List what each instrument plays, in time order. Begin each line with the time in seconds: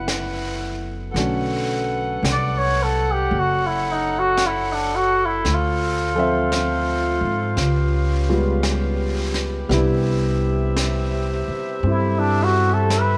Already playing: upright bass F#1, grand piano D3 F#3 A3 B3 C#4, saxophone section E4 B4 F#5, trumpet F#4
0.08 brush sweep, snare, hi-hat pedal
1.12 upright bass B1, saxophone section A4 B4 F#5
1.16 grand piano D3 F#3 A3 C#4, brush sweep, snare
2.23 upright bass C2, brush sweep, snare, hi-hat pedal
2.32 trumpet D5
2.58 trumpet C#5
2.83 trumpet A4
3.13 trumpet G4
3.28 upright bass F#1, saxophone section C#5, brush sweep
3.39 trumpet F#4
3.67 trumpet E4
3.92 trumpet D#4
4.19 trumpet F#4
4.37 brush sweep, snare, hi-hat pedal
4.47 trumpet E4
4.73 trumpet D4
4.96 trumpet F#4
5.25 trumpet E4
5.44 upright bass D2, saxophone section F4 C5, brush sweep, snare
5.54 trumpet F4
6.15 grand piano F3 C4 A4
6.19 grand piano E5
6.52 brush sweep, snare, hi-hat pedal
7.21 upright bass G#2
7.57 upright bass C#2, saxophone section C#4 G4 B4, brush sweep, snare
8.29 grand piano G3 G#3 B3 F4
8.63 brush sweep, snare, hi-hat pedal
9.34 snare
9.69 upright bass C2, saxophone section C3 E5, grand piano G3 B3 D4, brush sweep, snare
9.73 grand piano E4
10.76 brush sweep, snare, hi-hat pedal
11.48 muted upright bass stroke
11.83 upright bass G2, grand piano C4 E4, saxophone section A4, brush sweep
11.92 trumpet E4
12.19 trumpet D4
12.44 trumpet F#4
12.74 trumpet A4
12.90 brush sweep, snare, hi-hat pedal
12.99 trumpet B4